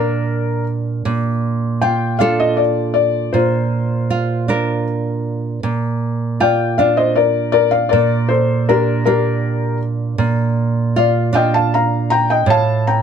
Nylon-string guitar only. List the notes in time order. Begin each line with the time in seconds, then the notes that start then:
Already playing: A#2 A#3 D4
1.05 A#2
1.82 F4
2.20 D4 F4 A4
3.34 A#2
4.10 F4
4.48 D4 F4 A#4
5.63 A#2
6.40 F4
6.79 D4 F4
7.93 A#2
8.69 D4
9.06 A#3 D4
10.18 A#2
10.96 F4
11.33 D4 F4
12.46 A2